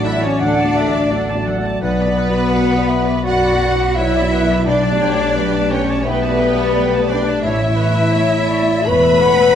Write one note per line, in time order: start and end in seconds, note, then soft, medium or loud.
0.00 1.77 A1 medium
0.00 1.84 A1 medium
0.00 1.85 A2 medium
0.00 1.10 F#3 medium
0.00 0.16 A3 medium
0.00 0.92 A3 medium
0.00 0.16 F#4 medium
0.00 2.33 F#4 medium
0.00 0.57 A4 medium
0.00 0.16 D5 medium
0.00 0.41 D5 medium
0.00 0.22 E5 medium
0.05 0.22 E4 medium
0.05 0.23 E4 loud
0.05 0.23 A4 medium
0.05 0.23 E5 medium
0.05 0.40 F#5 medium
0.05 0.23 F#5 medium
0.16 0.38 A3 medium
0.16 0.38 F#4 medium
0.16 0.38 D5 medium
0.22 0.40 C#4 medium
0.22 0.41 C#4 medium
0.22 0.40 C#5 medium
0.22 0.41 D5 medium
0.22 4.13 A5 medium
0.22 0.41 A5 medium
0.39 0.63 D2 medium
0.39 1.46 D4 medium
0.39 1.46 D4 loud
0.39 0.57 A4 medium
0.39 1.46 D5 medium
0.39 0.78 F#5 medium
0.39 0.57 F#5 medium
0.39 2.87 F#5 medium
0.58 1.84 A4 medium
0.58 0.76 D5 medium
0.58 0.76 A5 medium
0.64 0.85 A3 medium
0.64 0.85 F#4 medium
0.64 0.85 D5 medium
0.77 0.94 A4 medium
0.77 1.12 E5 medium
0.77 0.94 F#5 medium
0.87 1.08 A3 medium
0.87 1.08 F#4 medium
0.87 1.09 D5 medium
0.93 1.28 A3 medium
0.93 1.11 D5 medium
0.93 1.11 A5 medium
1.10 1.45 F#3 medium
1.10 1.31 A3 medium
1.10 1.32 F#4 medium
1.10 1.28 A4 medium
1.10 1.81 D5 medium
1.10 1.32 D5 medium
1.10 1.28 F#5 medium
1.29 1.63 A3 medium
1.29 1.47 D5 medium
1.29 1.47 A5 medium
1.34 1.55 A3 medium
1.34 1.56 F#4 medium
1.34 1.56 D5 medium
1.46 2.15 F#3 medium
1.46 1.64 A4 medium
1.46 1.64 F#5 medium
1.57 1.78 A3 medium
1.57 1.79 F#4 medium
1.57 1.79 D5 medium
1.64 1.84 A3 medium
1.64 1.82 D5 medium
1.64 1.82 A5 medium
1.80 2.04 B1 medium
1.80 7.40 B1 medium
1.80 4.66 B2 medium
1.80 3.21 B3 loud
1.80 3.21 B3 medium
1.80 3.21 B4 loud
1.80 3.22 B4 loud
1.80 1.99 B4 medium
1.80 2.51 D5 loud
1.80 1.98 F#5 medium
1.99 3.95 B3 medium
1.99 2.17 D5 medium
1.99 2.17 B5 medium
2.06 2.26 F#3 medium
2.06 2.26 F#4 medium
2.06 2.27 D5 medium
2.17 3.78 F#3 medium
2.17 2.34 B4 medium
2.17 2.34 F#5 medium
2.29 2.50 F#3 medium
2.29 2.50 F#4 medium
2.29 2.50 D5 medium
2.34 2.69 F#4 medium
2.34 2.51 D5 medium
2.34 2.52 B5 medium
2.51 2.74 F#3 medium
2.51 2.74 F#4 medium
2.51 2.69 B4 medium
2.51 2.74 D5 medium
2.51 2.90 F#5 medium
2.51 2.69 F#5 medium
2.70 3.42 F#4 medium
2.70 2.89 D5 medium
2.70 2.89 B5 medium
2.77 2.99 F#3 medium
2.77 2.99 F#4 medium
2.77 2.99 D5 medium
2.88 3.08 B4 medium
2.88 3.25 E5 medium
2.88 3.24 F#5 medium
2.88 3.08 F#5 medium
3.02 3.23 F#3 medium
3.02 3.24 F#4 medium
3.02 3.24 D5 medium
3.06 3.25 D5 medium
3.06 6.96 B5 medium
3.06 3.26 B5 medium
3.23 3.50 F#2 medium
3.23 3.95 F#4 loud
3.23 3.95 F#4 medium
3.23 3.42 B4 medium
3.23 3.72 D5 medium
3.23 4.68 F#5 medium
3.23 3.42 F#5 medium
3.23 3.96 F#5 medium
3.23 3.95 F#5 medium
3.43 4.69 F#4 medium
3.43 3.61 D5 medium
3.43 3.61 B5 medium
3.51 3.71 F#3 medium
3.51 3.72 F#4 medium
3.51 3.72 D5 medium
3.62 3.79 B4 medium
3.62 3.79 F#5 medium
3.75 3.95 F#3 medium
3.75 3.95 F#4 medium
3.79 4.13 F#3 medium
3.79 3.96 D5 medium
3.79 3.96 B5 medium
3.94 4.30 B3 medium
3.94 4.65 E4 loud
3.94 4.66 E4 medium
3.94 4.13 B4 medium
3.94 4.30 C#5 medium
3.94 4.66 E5 medium
3.94 4.13 F#5 medium
3.98 4.18 F#3 medium
3.98 4.18 F#4 medium
3.98 4.19 D5 medium
3.98 4.67 E5 medium
4.14 4.48 F#3 medium
4.14 4.31 D5 medium
4.14 4.31 B5 medium
4.21 4.41 F#3 medium
4.21 4.41 F#4 medium
4.21 4.41 D5 medium
4.31 7.47 B3 medium
4.31 4.49 B4 medium
4.31 4.65 B4 medium
4.31 4.49 F#5 medium
4.45 4.65 F#3 medium
4.45 4.65 F#4 medium
4.45 4.65 D5 medium
4.49 4.69 F#3 medium
4.49 4.66 D5 medium
4.49 4.66 B5 medium
4.65 4.89 B1 medium
4.65 7.47 B2 medium
4.65 5.68 D4 loud
4.65 5.71 D4 medium
4.65 4.82 B4 medium
4.65 5.69 D5 medium
4.65 5.70 D5 medium
4.65 5.03 D5 medium
4.65 4.82 G5 medium
4.83 6.73 G3 medium
4.83 5.01 D5 medium
4.83 5.01 A5 medium
4.91 5.11 A3 medium
4.91 5.11 G4 medium
4.91 5.12 D5 medium
5.01 6.56 A3 medium
5.01 5.19 B4 medium
5.01 5.37 C#5 medium
5.01 5.19 G5 medium
5.13 5.34 A3 medium
5.13 5.34 G4 medium
5.13 5.34 D5 medium
5.19 7.47 G4 medium
5.19 5.36 D5 medium
5.19 5.36 A5 medium
5.36 5.57 A3 medium
5.36 5.57 G4 medium
5.36 5.81 B4 medium
5.36 5.53 B4 medium
5.36 5.58 D5 medium
5.36 5.53 G5 medium
5.53 6.22 A4 medium
5.53 5.71 D5 medium
5.53 5.71 A5 medium
5.60 5.80 A3 medium
5.60 5.80 G4 medium
5.60 5.80 D5 medium
5.71 6.06 C#4 medium
5.71 5.88 B4 medium
5.71 6.06 C#5 medium
5.71 5.88 G5 medium
5.71 6.04 G5 medium
5.83 6.03 A3 soft
5.83 6.03 G4 medium
5.83 6.04 D5 medium
5.89 6.06 D5 medium
5.89 6.05 A5 medium
5.89 7.47 D6 medium
6.03 6.28 B1 medium
6.03 7.09 B3 loud
6.03 7.10 B3 medium
6.03 7.09 B4 medium
6.03 7.10 B4 medium
6.03 6.22 B4 medium
6.03 6.74 E5 loud
6.03 7.47 G5 medium
6.03 6.22 G5 medium
6.23 8.30 A4 medium
6.23 6.40 D5 medium
6.23 6.40 A5 medium
6.29 6.49 A3 medium
6.29 6.49 G4 medium
6.29 6.50 D5 medium
6.40 6.57 B4 medium
6.40 7.47 D5 medium
6.40 6.57 G5 medium
6.52 6.73 A3 medium
6.52 6.73 G4 medium
6.52 6.73 D5 medium
6.58 6.91 A3 medium
6.58 6.75 D5 medium
6.58 6.75 A5 medium
6.73 7.08 G3 medium
6.73 6.96 A3 medium
6.73 6.96 G4 medium
6.73 6.91 B4 medium
6.73 7.10 D5 medium
6.73 6.96 D5 medium
6.73 6.91 G5 medium
6.92 7.25 A3 medium
6.92 7.10 D5 medium
6.92 7.09 A5 medium
6.98 7.18 A3 medium
6.98 7.19 G4 medium
6.98 7.19 D5 medium
7.09 7.46 G3 medium
7.09 7.45 D4 medium
7.09 7.42 B4 medium
7.09 7.27 B4 medium
7.09 7.43 D5 medium
7.09 7.44 D5 medium
7.09 7.27 G5 medium
7.20 7.41 A3 medium
7.20 7.42 G4 medium
7.20 7.42 D5 medium
7.26 7.77 A3 medium
7.26 7.45 D5 medium
7.26 7.44 A5 medium
7.42 7.66 A1 medium
7.42 8.02 A1 medium
7.42 9.55 A2 medium
7.42 8.83 E4 loud
7.42 8.86 E4 medium
7.42 7.78 C#5 medium
7.42 7.60 C#5 medium
7.42 8.82 E5 medium
7.42 7.60 E5 medium
7.42 8.86 E5 loud
7.61 9.55 E3 medium
7.61 7.78 E5 medium
7.68 7.88 A3 medium
7.68 7.88 E4 soft
7.68 7.88 C#5 medium
7.76 9.38 A3 medium
7.76 8.14 B4 medium
7.76 7.96 C#5 medium
7.90 8.11 A3 medium
7.90 8.11 E4 medium
7.90 8.11 C#5 medium
7.95 9.55 E4 medium
7.95 8.13 E5 medium
8.12 8.35 A3 medium
8.12 8.50 C#5 medium
8.12 8.31 C#5 medium
8.12 8.35 C#5 medium
8.31 9.02 A4 medium
8.31 8.49 E5 medium
8.38 8.59 A3 medium
8.38 8.60 E4 medium
8.38 8.60 C#5 medium
8.48 8.68 C#5 medium
8.48 8.86 D5 medium
8.62 8.83 A3 soft
8.62 8.84 E4 soft
8.62 8.84 C#5 medium
8.67 8.86 E5 medium
8.67 9.55 C#6 medium
8.85 9.45 E1 medium
8.85 9.09 E2 medium
8.85 9.55 B4 loud
8.85 9.03 C#5 medium
8.85 9.23 E5 medium
8.85 9.55 E5 medium
8.85 9.55 B5 loud
9.03 9.55 A4 medium
9.03 9.22 E5 medium
9.12 9.32 A3 medium
9.12 9.32 E4 medium
9.12 9.32 C#5 medium
9.22 9.55 C#5 medium
9.22 9.39 C#5 medium
9.22 9.55 F#5 medium
9.34 9.55 A3 medium
9.34 9.55 C#5 medium
9.39 9.55 A3 soft
9.39 9.55 E5 medium